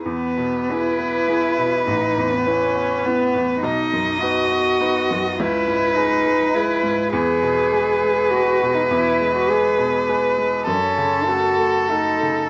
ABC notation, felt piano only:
X:1
M:3/4
L:1/8
Q:1/4=102
K:E
V:1 name="Felt piano"
E,, B,, [B,EG] B, [B,EG] B,, | A,,, E,, [B,EB] B, [B,EB] E,, | B,,, F,, [B,DB] B, [B,DB] F,, | C,, G,, [G,GB] G, [G,GB] G,, |
E,, B,, [G,GB] G, [G,GB] B,, | E,, G, [G,GB] B,, [G,GB] G, | F,, C, [A,FA] A, [A,FA] C, |]